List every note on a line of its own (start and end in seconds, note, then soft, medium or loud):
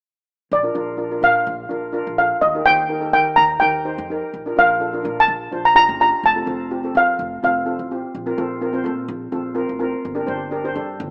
0.51 0.74 A#1 medium
0.51 1.26 D5 medium
0.63 0.70 D4 medium
0.63 0.71 F4 medium
0.63 0.71 A#4 medium
0.75 1.20 A#1 medium
0.75 0.90 D4 medium
0.75 0.90 F4 medium
0.75 0.90 A#4 medium
0.97 1.06 D4 medium
0.97 1.06 F4 medium
0.97 1.06 A#4 medium
1.11 1.18 D4 medium
1.11 1.18 F4 medium
1.11 1.19 A#4 medium
1.21 1.45 A#2 medium
1.21 1.51 D4 medium
1.21 1.51 F4 medium
1.21 1.51 A#4 medium
1.21 2.17 F5 medium
1.47 1.69 A#1 medium
1.69 2.05 A#1 medium
1.69 1.85 D4 medium
1.69 1.85 F4 medium
1.69 1.86 A#4 medium
1.92 2.08 D4 medium
1.92 2.09 F4 medium
1.92 2.09 A#4 medium
2.07 2.30 A#1 medium
2.18 2.40 D4 medium
2.18 2.40 F4 medium
2.18 2.40 A4 medium
2.18 2.43 F5 medium
2.41 2.65 D#2 medium
2.41 2.66 D#5 medium
2.55 2.62 D#4 medium
2.55 2.62 G4 medium
2.55 2.62 A#4 medium
2.66 3.11 D#2 medium
2.66 2.81 D#4 medium
2.66 2.81 G4 medium
2.66 2.81 C5 medium
2.66 3.12 G5 medium
2.89 2.97 D#4 medium
2.89 2.97 G4 medium
2.89 2.97 A#4 medium
3.00 3.08 D#4 medium
3.00 3.09 G4 medium
3.00 3.09 A4 medium
3.12 3.36 D#3 medium
3.12 3.42 D#4 medium
3.12 3.42 G4 medium
3.12 3.42 A#4 medium
3.12 3.38 G5 medium
3.36 3.60 D#2 medium
3.36 3.61 A#5 medium
3.60 3.96 D#2 medium
3.60 3.76 D#4 medium
3.60 3.76 G4 medium
3.60 3.77 A#4 medium
3.60 4.05 G5 medium
3.85 4.00 D#4 medium
3.85 4.00 G4 medium
3.85 4.00 C5 medium
3.98 4.21 F2 medium
4.10 4.31 D#4 medium
4.10 4.31 G4 medium
4.10 4.32 A#4 medium
4.33 4.56 A#1 medium
4.46 4.52 D4 medium
4.46 4.53 F4 medium
4.46 4.53 A#4 medium
4.56 5.02 A#1 medium
4.56 4.71 D4 medium
4.56 4.72 F4 medium
4.56 4.72 A#4 medium
4.56 5.20 F5 medium
4.80 4.88 D4 medium
4.80 4.88 F4 medium
4.80 4.88 A4 medium
4.93 5.00 D4 medium
4.93 5.00 F4 medium
4.93 5.00 A#4 medium
5.03 5.27 A#2 medium
5.03 5.33 D4 medium
5.03 5.33 F4 medium
5.03 5.33 A#4 medium
5.20 5.68 A5 medium
5.28 5.51 A#1 medium
5.51 5.87 A#1 medium
5.51 5.67 D4 medium
5.51 5.67 F4 medium
5.51 5.67 C5 medium
5.65 5.75 A#5 medium
5.75 5.90 D4 medium
5.75 5.90 F4 medium
5.75 5.91 G4 medium
5.75 6.00 A#5 loud
5.89 6.11 F#1 medium
6.00 6.21 D4 medium
6.00 6.21 F4 medium
6.00 6.22 G4 medium
6.00 6.25 A#5 medium
6.23 6.46 F1 medium
6.23 6.98 A5 medium
6.35 6.42 C4 medium
6.35 6.43 F4 medium
6.35 6.43 A4 medium
6.46 6.92 F1 medium
6.46 6.61 C4 medium
6.46 6.62 F4 medium
6.46 6.62 A4 medium
6.71 6.78 C4 medium
6.71 6.79 F4 medium
6.71 6.79 G4 medium
6.83 6.90 C4 medium
6.83 6.90 F4 medium
6.83 6.91 A4 medium
6.95 7.17 F2 medium
6.95 7.24 C4 medium
6.95 7.24 F4 medium
6.95 7.25 A4 medium
6.95 7.43 F5 medium
7.19 7.41 F1 medium
7.43 7.77 F1 medium
7.43 7.57 C4 medium
7.43 7.58 F4 medium
7.43 7.58 A4 medium
7.43 7.88 F5 medium
7.66 7.81 C4 medium
7.66 7.81 F4 medium
7.66 7.81 A4 medium
7.79 8.01 A1 medium
7.91 8.12 C4 medium
7.91 8.12 F4 medium
7.91 8.13 G4 medium
8.15 8.37 A#1 medium
8.26 8.33 C4 medium
8.26 8.33 F4 medium
8.26 8.33 A#4 medium
8.38 8.83 A#1 medium
8.38 8.53 C4 medium
8.38 8.53 F4 medium
8.38 8.53 A4 medium
8.61 8.69 C4 medium
8.61 8.69 F4 medium
8.61 8.69 A#4 medium
8.73 8.80 C4 medium
8.73 8.80 F4 medium
8.73 8.81 C5 medium
8.84 9.08 A#2 medium
8.84 9.13 C4 medium
8.84 9.13 F4 medium
8.84 9.14 A4 medium
9.08 9.31 A#1 medium
9.32 9.67 A#1 medium
9.32 9.47 C4 medium
9.32 9.47 F4 medium
9.32 9.47 A4 medium
9.55 9.71 C4 medium
9.55 9.71 F4 medium
9.55 9.71 A#4 medium
9.69 9.92 A1 medium
9.79 10.01 C4 medium
9.79 10.02 F4 medium
9.79 10.02 A#4 medium
10.05 10.27 G1 medium
10.15 10.22 D4 medium
10.15 10.23 G4 medium
10.15 10.23 A#4 medium
10.26 10.73 G1 medium
10.26 10.42 D4 medium
10.26 10.42 G4 medium
10.26 10.42 C5 medium
10.51 10.59 D4 medium
10.51 10.59 G4 medium
10.51 10.60 A#4 medium
10.64 10.71 D4 medium
10.64 10.71 G4 medium
10.64 10.71 C5 medium
10.75 10.98 G2 medium
10.75 11.04 D4 medium
10.75 11.04 G4 medium
10.75 11.05 A4 medium
11.00 11.11 G1 loud